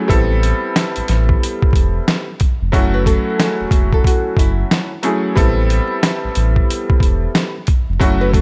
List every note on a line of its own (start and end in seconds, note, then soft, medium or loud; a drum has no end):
0.08 0.53 A1 loud
0.08 2.25 G3 loud
0.08 2.25 B3 medium
0.08 2.25 C4 medium
0.08 2.25 E4 medium
0.08 2.26 A4 loud
0.08 kick loud
0.08 closed hi-hat medium
0.43 closed hi-hat medium
0.76 snare loud
0.76 closed hi-hat loud
0.96 1.01 A1 soft
0.96 closed hi-hat medium
1.08 1.35 A1 loud
1.08 snare soft
1.08 closed hi-hat medium
1.29 kick medium
1.43 closed hi-hat loud
1.62 kick loud
1.73 2.00 E1 medium
1.73 kick loud
1.73 closed hi-hat medium
2.08 snare loud
2.08 closed hi-hat medium
2.40 kick medium
2.40 closed hi-hat medium
2.61 2.71 F1 medium
2.72 3.16 F#1 loud
2.72 4.89 F#3 loud
2.72 4.89 A3 medium
2.72 4.89 C#4 medium
2.72 4.89 E4 medium
2.72 4.90 F#4 loud
2.72 kick loud
2.72 closed hi-hat medium
2.94 3.05 B4 medium
3.06 3.36 A4 medium
3.06 kick medium
3.06 closed hi-hat medium
3.39 3.90 G#4 medium
3.39 snare loud
3.39 closed hi-hat loud
3.60 3.65 E1 soft
3.71 3.98 E1 loud
3.71 kick loud
3.71 closed hi-hat medium
3.93 4.04 A4 medium
3.93 kick medium
4.04 4.35 F#4 medium
4.04 kick medium
4.04 closed hi-hat loud
4.37 4.64 F#1 loud
4.37 4.68 E4 medium
4.37 kick loud
4.37 closed hi-hat medium
4.71 snare loud
4.71 closed hi-hat medium
5.03 5.34 F#3 medium
5.03 5.35 A3 medium
5.03 5.35 C#4 medium
5.03 5.35 E4 medium
5.03 5.35 G#4 medium
5.03 closed hi-hat medium
5.35 5.80 A1 loud
5.35 7.52 G3 loud
5.35 7.52 B3 medium
5.35 7.53 C4 medium
5.35 7.53 E4 loud
5.35 7.53 A4 loud
5.35 kick loud
5.35 closed hi-hat medium
5.70 closed hi-hat medium
6.03 snare loud
6.03 closed hi-hat loud
6.24 6.29 A1 soft
6.35 6.62 A1 loud
6.35 closed hi-hat medium
6.56 kick loud
6.70 closed hi-hat loud
6.90 kick loud
7.00 7.27 E1 medium
7.00 kick loud
7.00 closed hi-hat medium
7.35 snare loud
7.35 closed hi-hat medium
7.67 kick medium
7.67 closed hi-hat medium
7.89 7.98 F1 medium
7.99 8.41 F#1 loud
7.99 8.41 F#3 loud
7.99 8.41 A3 medium
7.99 8.41 C#4 medium
7.99 8.41 E4 medium
7.99 8.41 F#4 loud
7.99 kick loud
7.99 closed hi-hat medium
8.21 8.32 B4 medium
8.33 8.41 A4 medium
8.33 kick loud
8.33 closed hi-hat medium